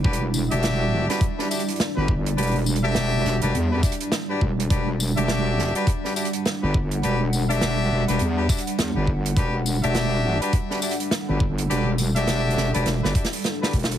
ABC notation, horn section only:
X:1
M:4/4
L:1/16
Q:"Swing 16ths" 1/4=103
K:Em
V:1 name="Horn section"
[DFGB] z2 [DFGe]4 [DFGB] z [DFGB] [DFGe] z2 [DFGB] z2 | [DFGB] z2 [DFGe]4 [DFGB] z [DFGB] [DFGe] z2 [DFGB] z2 | [DFGB] z2 [DFGe]4 [DFGB] z [DFGB] [DFGe] z2 [DFGB] z2 | [DFGB] z2 [DFGe]4 [DFGB] z [DFGB] [DFGe] z2 [DFGB] z2 |
[DFGB] z2 [DFGe]4 [DFGB] z [DFGB] [DFGe] z2 [DFGB] z2 | [DFGB] z2 [DFGe]4 [DFGB] z [DFGB] [DFGe] z2 [DFGB] z2 |]